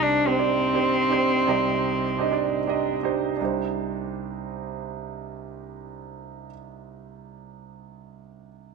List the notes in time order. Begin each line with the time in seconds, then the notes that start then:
Already playing: C2 C3 D4 D#4 G4 C5
0.02 D4
0.25 C4 D4 D#4 G4 C5
0.37 D4 D#4 G4 D5
0.73 D4 D#4 G4 C5
1.10 D4 D#4 G4 C5
1.47 C2 C3 D#4 G4 D5 D#5
2.18 D4 D#4 G4 D#5
2.31 D4 D#4 G4 D5
2.67 D4 D#4 G4 D#5
3.03 D4 D#4 G4 C5
3.36 D4 D#4
3.40 C2 G4 C5